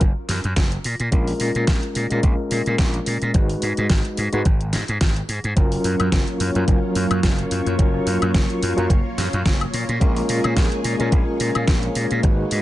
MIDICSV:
0, 0, Header, 1, 5, 480
1, 0, Start_track
1, 0, Tempo, 555556
1, 971, Time_signature, 4, 2, 24, 8
1, 10902, End_track
2, 0, Start_track
2, 0, Title_t, "String machine"
2, 0, Program_c, 0, 50
2, 4807, Note_on_c, 0, 54, 71
2, 4807, Note_on_c, 0, 65, 70
2, 4807, Note_on_c, 0, 73, 81
2, 4808, Note_on_c, 0, 58, 72
2, 8375, Note_off_c, 0, 54, 0
2, 8409, Note_on_c, 0, 68, 73
2, 10534, Note_off_c, 0, 65, 0
2, 10534, Note_off_c, 0, 73, 0
2, 10535, Note_off_c, 0, 58, 0
2, 10549, Note_off_c, 0, 68, 0
2, 10569, Note_on_c, 0, 71, 83
2, 10570, Note_on_c, 0, 63, 73
2, 10571, Note_on_c, 0, 56, 79
2, 10571, Note_on_c, 0, 66, 69
2, 10902, Note_off_c, 0, 56, 0
2, 10902, Note_off_c, 0, 63, 0
2, 10902, Note_off_c, 0, 66, 0
2, 10902, Note_off_c, 0, 71, 0
2, 10902, End_track
3, 0, Start_track
3, 0, Title_t, "Tine electric piano"
3, 0, Program_c, 1, 4
3, 963, Note_on_c, 1, 56, 70
3, 968, Note_on_c, 1, 61, 66
3, 973, Note_on_c, 1, 65, 69
3, 978, Note_on_c, 1, 70, 80
3, 1787, Note_off_c, 1, 56, 0
3, 1790, Note_off_c, 1, 61, 0
3, 1792, Note_off_c, 1, 65, 0
3, 1795, Note_off_c, 1, 70, 0
3, 1814, Note_on_c, 1, 56, 67
3, 1821, Note_on_c, 1, 61, 60
3, 1828, Note_on_c, 1, 65, 61
3, 1833, Note_on_c, 1, 70, 73
3, 2861, Note_off_c, 1, 56, 0
3, 2864, Note_off_c, 1, 61, 0
3, 2868, Note_off_c, 1, 65, 0
3, 2871, Note_off_c, 1, 70, 0
3, 2881, Note_on_c, 1, 56, 68
3, 2887, Note_on_c, 1, 63, 67
3, 2894, Note_on_c, 1, 66, 67
3, 2899, Note_on_c, 1, 71, 75
3, 3706, Note_off_c, 1, 56, 0
3, 3709, Note_off_c, 1, 63, 0
3, 3713, Note_off_c, 1, 66, 0
3, 3715, Note_off_c, 1, 71, 0
3, 3737, Note_on_c, 1, 56, 84
3, 3740, Note_on_c, 1, 63, 79
3, 3744, Note_on_c, 1, 66, 77
3, 3747, Note_on_c, 1, 71, 92
3, 3837, Note_off_c, 1, 56, 0
3, 3838, Note_off_c, 1, 63, 0
3, 3840, Note_off_c, 1, 66, 0
3, 3841, Note_off_c, 1, 71, 0
3, 4801, Note_on_c, 1, 54, 73
3, 4805, Note_on_c, 1, 61, 68
3, 4811, Note_on_c, 1, 65, 70
3, 4817, Note_on_c, 1, 70, 84
3, 5626, Note_off_c, 1, 54, 0
3, 5628, Note_off_c, 1, 61, 0
3, 5631, Note_off_c, 1, 65, 0
3, 5634, Note_off_c, 1, 70, 0
3, 5654, Note_on_c, 1, 54, 66
3, 5659, Note_on_c, 1, 61, 65
3, 5666, Note_on_c, 1, 65, 60
3, 5671, Note_on_c, 1, 70, 72
3, 6701, Note_off_c, 1, 54, 0
3, 6703, Note_off_c, 1, 61, 0
3, 6707, Note_off_c, 1, 65, 0
3, 6709, Note_off_c, 1, 70, 0
3, 6721, Note_on_c, 1, 54, 70
3, 6728, Note_on_c, 1, 61, 67
3, 6735, Note_on_c, 1, 65, 66
3, 6741, Note_on_c, 1, 70, 79
3, 7546, Note_off_c, 1, 54, 0
3, 7550, Note_off_c, 1, 61, 0
3, 7553, Note_off_c, 1, 65, 0
3, 7556, Note_off_c, 1, 70, 0
3, 7574, Note_on_c, 1, 54, 88
3, 7578, Note_on_c, 1, 61, 84
3, 7580, Note_on_c, 1, 65, 84
3, 7584, Note_on_c, 1, 70, 97
3, 7675, Note_off_c, 1, 54, 0
3, 7677, Note_off_c, 1, 61, 0
3, 7678, Note_off_c, 1, 65, 0
3, 7680, Note_off_c, 1, 70, 0
3, 8642, Note_on_c, 1, 56, 74
3, 8648, Note_on_c, 1, 61, 66
3, 8654, Note_on_c, 1, 65, 70
3, 8660, Note_on_c, 1, 70, 85
3, 9467, Note_off_c, 1, 56, 0
3, 9470, Note_off_c, 1, 61, 0
3, 9473, Note_off_c, 1, 65, 0
3, 9476, Note_off_c, 1, 70, 0
3, 9493, Note_on_c, 1, 56, 68
3, 9500, Note_on_c, 1, 61, 63
3, 9506, Note_on_c, 1, 65, 60
3, 9512, Note_on_c, 1, 70, 78
3, 10540, Note_off_c, 1, 56, 0
3, 10544, Note_off_c, 1, 61, 0
3, 10547, Note_off_c, 1, 65, 0
3, 10550, Note_off_c, 1, 70, 0
3, 10563, Note_on_c, 1, 56, 71
3, 10569, Note_on_c, 1, 63, 66
3, 10576, Note_on_c, 1, 66, 66
3, 10581, Note_on_c, 1, 71, 77
3, 10902, Note_off_c, 1, 56, 0
3, 10902, Note_off_c, 1, 63, 0
3, 10902, Note_off_c, 1, 66, 0
3, 10902, Note_off_c, 1, 71, 0
3, 10902, End_track
4, 0, Start_track
4, 0, Title_t, "Slap bass"
4, 0, Program_c, 2, 36
4, 8, Note_on_c, 2, 30, 93
4, 96, Note_off_c, 2, 30, 0
4, 252, Note_on_c, 2, 42, 94
4, 338, Note_off_c, 2, 42, 0
4, 384, Note_on_c, 2, 42, 95
4, 455, Note_off_c, 2, 42, 0
4, 490, Note_on_c, 2, 30, 86
4, 656, Note_off_c, 2, 30, 0
4, 734, Note_on_c, 2, 46, 83
4, 819, Note_off_c, 2, 46, 0
4, 863, Note_on_c, 2, 46, 78
4, 934, Note_off_c, 2, 46, 0
4, 971, Note_on_c, 2, 34, 87
4, 1136, Note_off_c, 2, 34, 0
4, 1212, Note_on_c, 2, 46, 91
4, 1298, Note_off_c, 2, 46, 0
4, 1343, Note_on_c, 2, 46, 93
4, 1414, Note_off_c, 2, 46, 0
4, 1449, Note_on_c, 2, 34, 84
4, 1536, Note_off_c, 2, 34, 0
4, 1692, Note_on_c, 2, 46, 93
4, 1778, Note_off_c, 2, 46, 0
4, 1825, Note_on_c, 2, 46, 87
4, 1895, Note_off_c, 2, 46, 0
4, 1930, Note_on_c, 2, 34, 102
4, 2017, Note_off_c, 2, 34, 0
4, 2171, Note_on_c, 2, 46, 97
4, 2257, Note_off_c, 2, 46, 0
4, 2305, Note_on_c, 2, 46, 97
4, 2375, Note_off_c, 2, 46, 0
4, 2410, Note_on_c, 2, 34, 90
4, 2576, Note_off_c, 2, 34, 0
4, 2652, Note_on_c, 2, 46, 91
4, 2738, Note_off_c, 2, 46, 0
4, 2783, Note_on_c, 2, 46, 81
4, 2854, Note_off_c, 2, 46, 0
4, 2891, Note_on_c, 2, 32, 91
4, 3056, Note_off_c, 2, 32, 0
4, 3132, Note_on_c, 2, 44, 92
4, 3218, Note_off_c, 2, 44, 0
4, 3265, Note_on_c, 2, 44, 95
4, 3335, Note_off_c, 2, 44, 0
4, 3370, Note_on_c, 2, 32, 80
4, 3457, Note_off_c, 2, 32, 0
4, 3611, Note_on_c, 2, 44, 91
4, 3697, Note_off_c, 2, 44, 0
4, 3742, Note_on_c, 2, 44, 85
4, 3813, Note_off_c, 2, 44, 0
4, 3849, Note_on_c, 2, 32, 96
4, 4090, Note_on_c, 2, 44, 79
4, 4103, Note_off_c, 2, 32, 0
4, 4177, Note_off_c, 2, 44, 0
4, 4223, Note_on_c, 2, 44, 93
4, 4294, Note_off_c, 2, 44, 0
4, 4330, Note_on_c, 2, 32, 83
4, 4496, Note_off_c, 2, 32, 0
4, 4568, Note_on_c, 2, 44, 83
4, 4656, Note_off_c, 2, 44, 0
4, 4702, Note_on_c, 2, 44, 86
4, 4774, Note_off_c, 2, 44, 0
4, 4811, Note_on_c, 2, 30, 88
4, 4976, Note_off_c, 2, 30, 0
4, 5049, Note_on_c, 2, 42, 91
4, 5136, Note_off_c, 2, 42, 0
4, 5184, Note_on_c, 2, 42, 95
4, 5254, Note_off_c, 2, 42, 0
4, 5289, Note_on_c, 2, 30, 88
4, 5376, Note_off_c, 2, 30, 0
4, 5530, Note_on_c, 2, 42, 96
4, 5617, Note_off_c, 2, 42, 0
4, 5662, Note_on_c, 2, 42, 89
4, 5733, Note_off_c, 2, 42, 0
4, 5770, Note_on_c, 2, 30, 95
4, 5857, Note_off_c, 2, 30, 0
4, 6009, Note_on_c, 2, 42, 95
4, 6097, Note_off_c, 2, 42, 0
4, 6140, Note_on_c, 2, 42, 91
4, 6212, Note_off_c, 2, 42, 0
4, 6250, Note_on_c, 2, 30, 87
4, 6416, Note_off_c, 2, 30, 0
4, 6491, Note_on_c, 2, 42, 85
4, 6577, Note_off_c, 2, 42, 0
4, 6621, Note_on_c, 2, 42, 80
4, 6693, Note_off_c, 2, 42, 0
4, 6731, Note_on_c, 2, 30, 87
4, 6896, Note_off_c, 2, 30, 0
4, 6969, Note_on_c, 2, 42, 96
4, 7056, Note_off_c, 2, 42, 0
4, 7103, Note_on_c, 2, 42, 98
4, 7174, Note_off_c, 2, 42, 0
4, 7210, Note_on_c, 2, 30, 88
4, 7297, Note_off_c, 2, 30, 0
4, 7453, Note_on_c, 2, 42, 92
4, 7538, Note_off_c, 2, 42, 0
4, 7583, Note_on_c, 2, 42, 88
4, 7654, Note_off_c, 2, 42, 0
4, 7690, Note_on_c, 2, 30, 98
4, 7777, Note_off_c, 2, 30, 0
4, 7931, Note_on_c, 2, 42, 101
4, 8017, Note_off_c, 2, 42, 0
4, 8064, Note_on_c, 2, 42, 96
4, 8135, Note_off_c, 2, 42, 0
4, 8170, Note_on_c, 2, 30, 90
4, 8336, Note_off_c, 2, 30, 0
4, 8412, Note_on_c, 2, 46, 89
4, 8498, Note_off_c, 2, 46, 0
4, 8543, Note_on_c, 2, 46, 79
4, 8614, Note_off_c, 2, 46, 0
4, 8650, Note_on_c, 2, 34, 88
4, 8816, Note_off_c, 2, 34, 0
4, 8892, Note_on_c, 2, 46, 93
4, 8978, Note_off_c, 2, 46, 0
4, 9025, Note_on_c, 2, 46, 100
4, 9095, Note_off_c, 2, 46, 0
4, 9129, Note_on_c, 2, 34, 85
4, 9216, Note_off_c, 2, 34, 0
4, 9370, Note_on_c, 2, 46, 92
4, 9457, Note_off_c, 2, 46, 0
4, 9503, Note_on_c, 2, 46, 86
4, 9574, Note_off_c, 2, 46, 0
4, 9611, Note_on_c, 2, 34, 98
4, 9697, Note_off_c, 2, 34, 0
4, 9851, Note_on_c, 2, 46, 92
4, 9937, Note_off_c, 2, 46, 0
4, 9985, Note_on_c, 2, 46, 92
4, 10055, Note_off_c, 2, 46, 0
4, 10092, Note_on_c, 2, 34, 88
4, 10257, Note_off_c, 2, 34, 0
4, 10331, Note_on_c, 2, 46, 87
4, 10417, Note_off_c, 2, 46, 0
4, 10465, Note_on_c, 2, 46, 83
4, 10535, Note_off_c, 2, 46, 0
4, 10570, Note_on_c, 2, 32, 91
4, 10736, Note_off_c, 2, 32, 0
4, 10813, Note_on_c, 2, 44, 96
4, 10898, Note_off_c, 2, 44, 0
4, 10902, End_track
5, 0, Start_track
5, 0, Title_t, "Drums"
5, 6, Note_on_c, 9, 42, 58
5, 9, Note_on_c, 9, 36, 108
5, 93, Note_off_c, 9, 42, 0
5, 95, Note_off_c, 9, 36, 0
5, 248, Note_on_c, 9, 38, 54
5, 249, Note_on_c, 9, 46, 97
5, 334, Note_off_c, 9, 38, 0
5, 335, Note_off_c, 9, 46, 0
5, 380, Note_on_c, 9, 42, 48
5, 467, Note_off_c, 9, 42, 0
5, 487, Note_on_c, 9, 38, 104
5, 489, Note_on_c, 9, 36, 97
5, 489, Note_on_c, 9, 42, 59
5, 574, Note_off_c, 9, 38, 0
5, 575, Note_off_c, 9, 36, 0
5, 575, Note_off_c, 9, 42, 0
5, 621, Note_on_c, 9, 42, 34
5, 707, Note_off_c, 9, 42, 0
5, 729, Note_on_c, 9, 46, 97
5, 816, Note_off_c, 9, 46, 0
5, 860, Note_on_c, 9, 42, 51
5, 947, Note_off_c, 9, 42, 0
5, 969, Note_on_c, 9, 36, 98
5, 969, Note_on_c, 9, 42, 62
5, 1055, Note_off_c, 9, 42, 0
5, 1056, Note_off_c, 9, 36, 0
5, 1101, Note_on_c, 9, 46, 54
5, 1188, Note_off_c, 9, 46, 0
5, 1208, Note_on_c, 9, 46, 96
5, 1294, Note_off_c, 9, 46, 0
5, 1340, Note_on_c, 9, 42, 51
5, 1426, Note_off_c, 9, 42, 0
5, 1446, Note_on_c, 9, 38, 104
5, 1447, Note_on_c, 9, 42, 60
5, 1449, Note_on_c, 9, 36, 100
5, 1532, Note_off_c, 9, 38, 0
5, 1534, Note_off_c, 9, 42, 0
5, 1535, Note_off_c, 9, 36, 0
5, 1581, Note_on_c, 9, 42, 33
5, 1667, Note_off_c, 9, 42, 0
5, 1687, Note_on_c, 9, 46, 92
5, 1773, Note_off_c, 9, 46, 0
5, 1819, Note_on_c, 9, 42, 49
5, 1905, Note_off_c, 9, 42, 0
5, 1928, Note_on_c, 9, 42, 63
5, 1929, Note_on_c, 9, 36, 112
5, 2014, Note_off_c, 9, 42, 0
5, 2016, Note_off_c, 9, 36, 0
5, 2167, Note_on_c, 9, 46, 94
5, 2254, Note_off_c, 9, 46, 0
5, 2300, Note_on_c, 9, 42, 50
5, 2386, Note_off_c, 9, 42, 0
5, 2406, Note_on_c, 9, 38, 108
5, 2407, Note_on_c, 9, 42, 61
5, 2410, Note_on_c, 9, 36, 95
5, 2492, Note_off_c, 9, 38, 0
5, 2493, Note_off_c, 9, 42, 0
5, 2496, Note_off_c, 9, 36, 0
5, 2539, Note_on_c, 9, 42, 37
5, 2626, Note_off_c, 9, 42, 0
5, 2647, Note_on_c, 9, 46, 95
5, 2734, Note_off_c, 9, 46, 0
5, 2779, Note_on_c, 9, 42, 52
5, 2865, Note_off_c, 9, 42, 0
5, 2888, Note_on_c, 9, 42, 64
5, 2890, Note_on_c, 9, 36, 108
5, 2974, Note_off_c, 9, 42, 0
5, 2976, Note_off_c, 9, 36, 0
5, 3020, Note_on_c, 9, 46, 57
5, 3106, Note_off_c, 9, 46, 0
5, 3127, Note_on_c, 9, 46, 94
5, 3214, Note_off_c, 9, 46, 0
5, 3260, Note_on_c, 9, 42, 51
5, 3346, Note_off_c, 9, 42, 0
5, 3366, Note_on_c, 9, 38, 105
5, 3367, Note_on_c, 9, 42, 60
5, 3370, Note_on_c, 9, 36, 96
5, 3452, Note_off_c, 9, 38, 0
5, 3453, Note_off_c, 9, 42, 0
5, 3456, Note_off_c, 9, 36, 0
5, 3499, Note_on_c, 9, 42, 35
5, 3585, Note_off_c, 9, 42, 0
5, 3607, Note_on_c, 9, 46, 95
5, 3693, Note_off_c, 9, 46, 0
5, 3738, Note_on_c, 9, 42, 52
5, 3824, Note_off_c, 9, 42, 0
5, 3848, Note_on_c, 9, 42, 64
5, 3850, Note_on_c, 9, 36, 108
5, 3934, Note_off_c, 9, 42, 0
5, 3936, Note_off_c, 9, 36, 0
5, 3980, Note_on_c, 9, 42, 36
5, 4066, Note_off_c, 9, 42, 0
5, 4085, Note_on_c, 9, 38, 58
5, 4087, Note_on_c, 9, 46, 95
5, 4172, Note_off_c, 9, 38, 0
5, 4173, Note_off_c, 9, 46, 0
5, 4220, Note_on_c, 9, 42, 50
5, 4306, Note_off_c, 9, 42, 0
5, 4327, Note_on_c, 9, 38, 108
5, 4329, Note_on_c, 9, 42, 66
5, 4330, Note_on_c, 9, 36, 95
5, 4414, Note_off_c, 9, 38, 0
5, 4415, Note_off_c, 9, 42, 0
5, 4416, Note_off_c, 9, 36, 0
5, 4462, Note_on_c, 9, 42, 35
5, 4548, Note_off_c, 9, 42, 0
5, 4570, Note_on_c, 9, 46, 97
5, 4656, Note_off_c, 9, 46, 0
5, 4701, Note_on_c, 9, 42, 53
5, 4787, Note_off_c, 9, 42, 0
5, 4809, Note_on_c, 9, 42, 64
5, 4810, Note_on_c, 9, 36, 110
5, 4896, Note_off_c, 9, 36, 0
5, 4896, Note_off_c, 9, 42, 0
5, 4940, Note_on_c, 9, 46, 59
5, 5027, Note_off_c, 9, 46, 0
5, 5049, Note_on_c, 9, 46, 103
5, 5135, Note_off_c, 9, 46, 0
5, 5181, Note_on_c, 9, 42, 51
5, 5181, Note_on_c, 9, 76, 57
5, 5268, Note_off_c, 9, 42, 0
5, 5268, Note_off_c, 9, 76, 0
5, 5290, Note_on_c, 9, 36, 103
5, 5290, Note_on_c, 9, 38, 110
5, 5291, Note_on_c, 9, 42, 63
5, 5376, Note_off_c, 9, 36, 0
5, 5376, Note_off_c, 9, 38, 0
5, 5378, Note_off_c, 9, 42, 0
5, 5422, Note_on_c, 9, 42, 34
5, 5508, Note_off_c, 9, 42, 0
5, 5531, Note_on_c, 9, 46, 102
5, 5617, Note_off_c, 9, 46, 0
5, 5662, Note_on_c, 9, 42, 49
5, 5748, Note_off_c, 9, 42, 0
5, 5770, Note_on_c, 9, 36, 116
5, 5770, Note_on_c, 9, 42, 66
5, 5856, Note_off_c, 9, 36, 0
5, 5856, Note_off_c, 9, 42, 0
5, 6009, Note_on_c, 9, 46, 97
5, 6095, Note_off_c, 9, 46, 0
5, 6141, Note_on_c, 9, 42, 53
5, 6141, Note_on_c, 9, 76, 61
5, 6227, Note_off_c, 9, 42, 0
5, 6227, Note_off_c, 9, 76, 0
5, 6249, Note_on_c, 9, 38, 115
5, 6250, Note_on_c, 9, 36, 102
5, 6251, Note_on_c, 9, 42, 67
5, 6336, Note_off_c, 9, 36, 0
5, 6336, Note_off_c, 9, 38, 0
5, 6337, Note_off_c, 9, 42, 0
5, 6382, Note_on_c, 9, 42, 36
5, 6469, Note_off_c, 9, 42, 0
5, 6490, Note_on_c, 9, 46, 99
5, 6576, Note_off_c, 9, 46, 0
5, 6623, Note_on_c, 9, 42, 54
5, 6709, Note_off_c, 9, 42, 0
5, 6730, Note_on_c, 9, 36, 112
5, 6730, Note_on_c, 9, 42, 61
5, 6817, Note_off_c, 9, 36, 0
5, 6817, Note_off_c, 9, 42, 0
5, 6970, Note_on_c, 9, 46, 101
5, 7057, Note_off_c, 9, 46, 0
5, 7102, Note_on_c, 9, 42, 51
5, 7102, Note_on_c, 9, 76, 58
5, 7189, Note_off_c, 9, 42, 0
5, 7189, Note_off_c, 9, 76, 0
5, 7210, Note_on_c, 9, 36, 107
5, 7210, Note_on_c, 9, 38, 109
5, 7212, Note_on_c, 9, 42, 63
5, 7296, Note_off_c, 9, 36, 0
5, 7297, Note_off_c, 9, 38, 0
5, 7298, Note_off_c, 9, 42, 0
5, 7344, Note_on_c, 9, 42, 35
5, 7430, Note_off_c, 9, 42, 0
5, 7452, Note_on_c, 9, 46, 105
5, 7539, Note_off_c, 9, 46, 0
5, 7583, Note_on_c, 9, 42, 50
5, 7670, Note_off_c, 9, 42, 0
5, 7690, Note_on_c, 9, 36, 122
5, 7692, Note_on_c, 9, 42, 63
5, 7776, Note_off_c, 9, 36, 0
5, 7779, Note_off_c, 9, 42, 0
5, 7932, Note_on_c, 9, 38, 60
5, 7933, Note_on_c, 9, 46, 101
5, 8018, Note_off_c, 9, 38, 0
5, 8020, Note_off_c, 9, 46, 0
5, 8064, Note_on_c, 9, 42, 48
5, 8150, Note_off_c, 9, 42, 0
5, 8170, Note_on_c, 9, 36, 106
5, 8171, Note_on_c, 9, 38, 120
5, 8172, Note_on_c, 9, 42, 64
5, 8256, Note_off_c, 9, 36, 0
5, 8257, Note_off_c, 9, 38, 0
5, 8259, Note_off_c, 9, 42, 0
5, 8305, Note_on_c, 9, 42, 35
5, 8305, Note_on_c, 9, 76, 58
5, 8391, Note_off_c, 9, 42, 0
5, 8391, Note_off_c, 9, 76, 0
5, 8411, Note_on_c, 9, 46, 100
5, 8498, Note_off_c, 9, 46, 0
5, 8545, Note_on_c, 9, 42, 53
5, 8631, Note_off_c, 9, 42, 0
5, 8650, Note_on_c, 9, 36, 113
5, 8651, Note_on_c, 9, 42, 59
5, 8736, Note_off_c, 9, 36, 0
5, 8738, Note_off_c, 9, 42, 0
5, 8782, Note_on_c, 9, 46, 63
5, 8869, Note_off_c, 9, 46, 0
5, 8890, Note_on_c, 9, 46, 109
5, 8977, Note_off_c, 9, 46, 0
5, 9022, Note_on_c, 9, 42, 48
5, 9022, Note_on_c, 9, 76, 59
5, 9108, Note_off_c, 9, 42, 0
5, 9108, Note_off_c, 9, 76, 0
5, 9129, Note_on_c, 9, 36, 110
5, 9129, Note_on_c, 9, 38, 112
5, 9130, Note_on_c, 9, 42, 57
5, 9215, Note_off_c, 9, 38, 0
5, 9216, Note_off_c, 9, 36, 0
5, 9216, Note_off_c, 9, 42, 0
5, 9262, Note_on_c, 9, 42, 33
5, 9348, Note_off_c, 9, 42, 0
5, 9370, Note_on_c, 9, 46, 106
5, 9456, Note_off_c, 9, 46, 0
5, 9502, Note_on_c, 9, 42, 50
5, 9588, Note_off_c, 9, 42, 0
5, 9609, Note_on_c, 9, 42, 58
5, 9610, Note_on_c, 9, 36, 125
5, 9695, Note_off_c, 9, 42, 0
5, 9696, Note_off_c, 9, 36, 0
5, 9849, Note_on_c, 9, 46, 105
5, 9936, Note_off_c, 9, 46, 0
5, 9981, Note_on_c, 9, 42, 48
5, 9981, Note_on_c, 9, 76, 60
5, 10067, Note_off_c, 9, 42, 0
5, 10067, Note_off_c, 9, 76, 0
5, 10088, Note_on_c, 9, 38, 111
5, 10089, Note_on_c, 9, 42, 59
5, 10091, Note_on_c, 9, 36, 104
5, 10174, Note_off_c, 9, 38, 0
5, 10175, Note_off_c, 9, 42, 0
5, 10177, Note_off_c, 9, 36, 0
5, 10220, Note_on_c, 9, 42, 34
5, 10306, Note_off_c, 9, 42, 0
5, 10328, Note_on_c, 9, 46, 109
5, 10415, Note_off_c, 9, 46, 0
5, 10460, Note_on_c, 9, 42, 50
5, 10546, Note_off_c, 9, 42, 0
5, 10570, Note_on_c, 9, 42, 60
5, 10571, Note_on_c, 9, 36, 112
5, 10656, Note_off_c, 9, 42, 0
5, 10657, Note_off_c, 9, 36, 0
5, 10809, Note_on_c, 9, 46, 101
5, 10896, Note_off_c, 9, 46, 0
5, 10902, End_track
0, 0, End_of_file